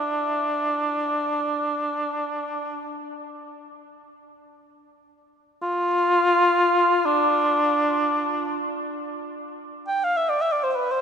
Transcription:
Already playing: D4
5.62 F4
7.05 D4
9.87 G5
10.04 F5
10.17 E5
10.29 D5
10.41 E5
10.52 D5
10.63 C5
10.72 B4 C5
10.91 C5

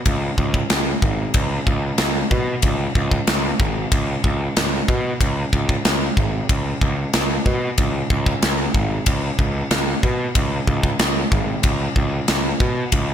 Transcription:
0.06 C#2, kick, ride bell
0.38 C#2, kick
0.54 kick
0.70 C#2, snare, ride bell
1.02 G#1, kick
1.34 C#2, kick, ride bell
1.67 C#2, kick
1.98 C#2, snare, ride bell
2.31 B2, kick
2.62 C#2, kick, ride bell
2.95 C#2, kick
3.11 kick
3.27 C#2, snare, ride bell
3.60 G#1, kick
3.92 C#2, kick, ride bell
4.24 C#2, kick
4.57 C#2, snare, ride bell
4.88 B2, kick
5.21 C#2, kick, ride bell
5.53 C#2, kick
5.69 kick
5.85 C#2, snare, ride bell
6.17 G#1, kick
6.49 C#2, kick, ride bell
6.81 C#2, kick
7.13 C#2, snare, ride bell
7.46 B2, kick
7.78 C#2, kick, ride bell
8.10 C#2, kick
8.26 kick
8.42 C#2, snare, ride bell
8.74 G#1, kick
9.06 C#2, kick, ride bell
9.39 C#2, kick
9.71 C#2, snare, ride bell
10.03 B2, kick
10.35 C#2, kick, ride bell
10.67 C#2, kick
10.83 kick
10.99 C#2, snare, ride bell
11.32 G#1, kick
11.63 C#2, kick, ride bell
11.96 C#2, kick
12.28 C#2, snare, ride bell
12.60 B2, kick
12.92 C#2, kick, ride bell

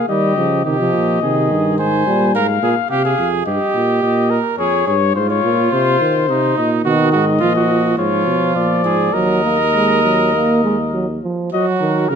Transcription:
0.09 D#3 G3 G4 D#5
0.37 C#3 F3
0.65 C3 D#3 G4 D#5
0.79 F3
0.94 A#2
1.22 C3 D#3 G#4
1.50 G2
1.78 G#2 C5 G#5
2.06 A#2 G3
2.35 G#2 A#4 F5
2.63 A#2 G#4
2.90 C3 G4 F5
3.05 G#4
3.18 F2
3.45 G2 G4 D#5
3.75 A#2
4.03 A#2 D#5
4.30 A#4
4.59 F2 G#4 C#5
4.87 G2 C#5
5.14 G#2 F4 C5
5.30 C#5
5.44 A#2
5.72 C3 C5
6.01 D#3
6.29 C3 D#4
6.57 A#2 D#5
6.85 B2 D#3 F#4 D#5
7.12 G#2 F#4
7.40 A#2 F3 F4
7.55 F#4
7.98 G#2 F3 F4 C#5
8.27 B2
8.55 A#2 D5
8.84 G#2 G#4
9.13 D#2 F#3 A#4 D#5
9.44 A#3
9.74 G#3
10.04 F#3
10.34 A#3
10.64 G#3
10.93 F#3
11.23 F3
11.52 F#3 F#4 D#5
11.81 D#3 A#4
12.09 C#3 F#3 A#4

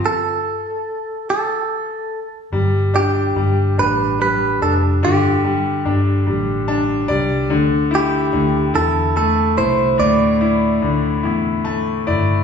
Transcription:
0.06 A4
1.30 A4
2.52 G1 G3
2.94 D4 G4
3.36 G1 G3
3.78 A1 D4 B4
4.19 G3 B4
4.62 F1 D4 A4
5.03 G1 D3 G4
5.44 G3
5.85 G1 D4
6.27 A1 G3
6.68 D4 A5
7.08 C2 G3 D5
7.50 D2 D3
7.91 E4
7.95 G4
8.33 D2 D3
8.74 E2 E4 A4
9.16 A3 A4
9.57 C2 E4 C5
9.98 D2 A2 D5
10.41 E4
10.82 D2 D3
11.23 E2 E4
11.64 A3 A5
12.07 G1 E4 D5

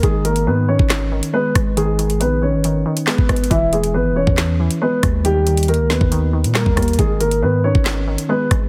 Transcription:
0.03 G#1 D#3 G#3 G#4, kick, closed hi-hat
0.25 D#3 A#3 A#4, closed hi-hat
0.36 closed hi-hat
0.47 G#2 D#3 B3 B4
0.68 D#3 C#4 C#5
0.79 G#1, kick
0.90 D#3, snare, clap, closed hi-hat
1.12 D#3
1.23 closed hi-hat
1.33 G#3 B3 B4
1.55 G#1 G#3, kick, cross-stick, closed hi-hat
1.77 D#3 G#3 G#4, closed hi-hat
1.99 D#3, closed hi-hat
2.10 closed hi-hat
2.20 A#1 D#3 B3 B4, closed hi-hat
2.42 D#3 C#4 C#5
2.53 G#1
2.64 D#3, closed hi-hat
2.86 D#3
2.97 closed hi-hat
3.07 G#3 B3 B4, snare, clap
3.18 G#1, kick
3.29 G#1 G#3 B3 B4, kick, cross-stick, closed hi-hat
3.36 closed hi-hat
3.44 closed hi-hat
3.50 E1 E3 E4, kick, closed hi-hat
3.73 E3 G#3 G#4, closed hi-hat
3.84 closed hi-hat
3.94 G#1 E3 B3 B4
4.11 E1
4.16 E3 C#4 C#5
4.27 E2, kick
4.38 E3, snare, clap, closed hi-hat
4.60 E3
4.71 closed hi-hat
4.82 G#3 B3 B4
5.03 D#2 G#3, kick, cross-stick, closed hi-hat
5.25 D#3 G3 G4, closed hi-hat
5.47 D#3, closed hi-hat
5.57 closed hi-hat
5.63 closed hi-hat
5.68 D#3 A#3 A#4, closed hi-hat
5.74 closed hi-hat
5.79 C#2
5.90 D#2 D#3 B3 B4, snare
6.01 D#2, kick
6.12 D#3, closed hi-hat
6.33 D#3
6.44 A#2, closed hi-hat
6.55 G3 A#3 A#4, snare, clap
6.66 D#2, kick
6.76 D#2 G3 A#3 A#4, kick, cross-stick, closed hi-hat
6.82 closed hi-hat
6.88 closed hi-hat
6.93 closed hi-hat
6.99 G#1 D#3 G#3 G#4, kick, closed hi-hat
7.20 D#3 A#3 A#4, closed hi-hat
7.31 closed hi-hat
7.42 G#2 D#3 B3 B4
7.64 D#3 C#4 C#5
7.75 G#1, kick
7.86 D#3, snare, clap, closed hi-hat
8.08 D#3
8.18 closed hi-hat
8.29 G#3 B3 B4
8.51 G#1 G#3, kick, cross-stick, closed hi-hat

